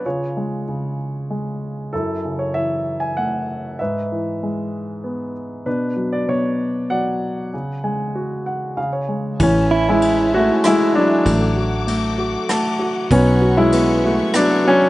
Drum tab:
RD |------|------|------|------|
SD |------|------|------|------|
BD |------|------|------|------|

RD |------|x-x-x-|x-x-x-|x-x-x-|
SD |------|----r-|----r-|----r-|
BD |------|o-----|o-----|o-----|